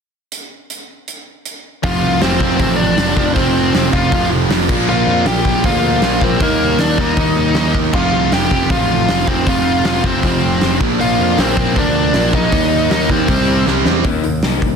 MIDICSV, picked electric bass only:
0, 0, Header, 1, 2, 480
1, 0, Start_track
1, 0, Tempo, 381437
1, 401, Time_signature, 4, 2, 24, 8
1, 18571, End_track
2, 0, Start_track
2, 0, Title_t, "Picked electric bass"
2, 0, Program_c, 0, 34
2, 2310, Note_on_c, 0, 29, 89
2, 2530, Note_off_c, 0, 29, 0
2, 2549, Note_on_c, 0, 36, 85
2, 2770, Note_off_c, 0, 36, 0
2, 2787, Note_on_c, 0, 29, 89
2, 3008, Note_off_c, 0, 29, 0
2, 3027, Note_on_c, 0, 29, 88
2, 3248, Note_off_c, 0, 29, 0
2, 3269, Note_on_c, 0, 33, 100
2, 3707, Note_off_c, 0, 33, 0
2, 3742, Note_on_c, 0, 29, 92
2, 3965, Note_off_c, 0, 29, 0
2, 3984, Note_on_c, 0, 29, 83
2, 4205, Note_off_c, 0, 29, 0
2, 4228, Note_on_c, 0, 29, 82
2, 4666, Note_off_c, 0, 29, 0
2, 4705, Note_on_c, 0, 29, 87
2, 4926, Note_off_c, 0, 29, 0
2, 4944, Note_on_c, 0, 29, 91
2, 5165, Note_off_c, 0, 29, 0
2, 5186, Note_on_c, 0, 29, 100
2, 5406, Note_off_c, 0, 29, 0
2, 5420, Note_on_c, 0, 29, 78
2, 5643, Note_off_c, 0, 29, 0
2, 5656, Note_on_c, 0, 29, 87
2, 5881, Note_off_c, 0, 29, 0
2, 5900, Note_on_c, 0, 34, 78
2, 6123, Note_off_c, 0, 34, 0
2, 6149, Note_on_c, 0, 34, 79
2, 6368, Note_off_c, 0, 34, 0
2, 6378, Note_on_c, 0, 41, 92
2, 6602, Note_off_c, 0, 41, 0
2, 6620, Note_on_c, 0, 34, 85
2, 6843, Note_off_c, 0, 34, 0
2, 6860, Note_on_c, 0, 34, 90
2, 7083, Note_off_c, 0, 34, 0
2, 7100, Note_on_c, 0, 38, 96
2, 7542, Note_off_c, 0, 38, 0
2, 7581, Note_on_c, 0, 34, 88
2, 7804, Note_off_c, 0, 34, 0
2, 7825, Note_on_c, 0, 34, 90
2, 8046, Note_off_c, 0, 34, 0
2, 8057, Note_on_c, 0, 39, 90
2, 8501, Note_off_c, 0, 39, 0
2, 8542, Note_on_c, 0, 39, 84
2, 8766, Note_off_c, 0, 39, 0
2, 8780, Note_on_c, 0, 39, 80
2, 9005, Note_off_c, 0, 39, 0
2, 9022, Note_on_c, 0, 39, 96
2, 9246, Note_off_c, 0, 39, 0
2, 9262, Note_on_c, 0, 39, 85
2, 9486, Note_off_c, 0, 39, 0
2, 9506, Note_on_c, 0, 39, 83
2, 9728, Note_off_c, 0, 39, 0
2, 9748, Note_on_c, 0, 39, 91
2, 9969, Note_off_c, 0, 39, 0
2, 9985, Note_on_c, 0, 29, 84
2, 10208, Note_off_c, 0, 29, 0
2, 10224, Note_on_c, 0, 36, 92
2, 10448, Note_off_c, 0, 36, 0
2, 10478, Note_on_c, 0, 29, 79
2, 10696, Note_off_c, 0, 29, 0
2, 10708, Note_on_c, 0, 29, 87
2, 10930, Note_off_c, 0, 29, 0
2, 10946, Note_on_c, 0, 33, 95
2, 11388, Note_off_c, 0, 33, 0
2, 11439, Note_on_c, 0, 29, 90
2, 11657, Note_off_c, 0, 29, 0
2, 11670, Note_on_c, 0, 29, 84
2, 11892, Note_off_c, 0, 29, 0
2, 11912, Note_on_c, 0, 29, 84
2, 12352, Note_off_c, 0, 29, 0
2, 12400, Note_on_c, 0, 29, 80
2, 12618, Note_off_c, 0, 29, 0
2, 12630, Note_on_c, 0, 29, 92
2, 12852, Note_off_c, 0, 29, 0
2, 12879, Note_on_c, 0, 29, 104
2, 13098, Note_off_c, 0, 29, 0
2, 13126, Note_on_c, 0, 29, 79
2, 13341, Note_off_c, 0, 29, 0
2, 13367, Note_on_c, 0, 29, 91
2, 13583, Note_off_c, 0, 29, 0
2, 13596, Note_on_c, 0, 34, 82
2, 13816, Note_off_c, 0, 34, 0
2, 13845, Note_on_c, 0, 34, 82
2, 14061, Note_off_c, 0, 34, 0
2, 14080, Note_on_c, 0, 41, 82
2, 14299, Note_off_c, 0, 41, 0
2, 14318, Note_on_c, 0, 34, 91
2, 14537, Note_off_c, 0, 34, 0
2, 14559, Note_on_c, 0, 34, 85
2, 14778, Note_off_c, 0, 34, 0
2, 14804, Note_on_c, 0, 38, 94
2, 15240, Note_off_c, 0, 38, 0
2, 15281, Note_on_c, 0, 34, 84
2, 15499, Note_off_c, 0, 34, 0
2, 15514, Note_on_c, 0, 34, 89
2, 15736, Note_off_c, 0, 34, 0
2, 15763, Note_on_c, 0, 39, 90
2, 16199, Note_off_c, 0, 39, 0
2, 16238, Note_on_c, 0, 39, 87
2, 16458, Note_off_c, 0, 39, 0
2, 16473, Note_on_c, 0, 39, 94
2, 16695, Note_off_c, 0, 39, 0
2, 16720, Note_on_c, 0, 36, 94
2, 16939, Note_off_c, 0, 36, 0
2, 16963, Note_on_c, 0, 36, 79
2, 17181, Note_off_c, 0, 36, 0
2, 17195, Note_on_c, 0, 36, 87
2, 17416, Note_off_c, 0, 36, 0
2, 17446, Note_on_c, 0, 40, 85
2, 17662, Note_off_c, 0, 40, 0
2, 17674, Note_on_c, 0, 39, 77
2, 18135, Note_off_c, 0, 39, 0
2, 18160, Note_on_c, 0, 36, 74
2, 18571, Note_off_c, 0, 36, 0
2, 18571, End_track
0, 0, End_of_file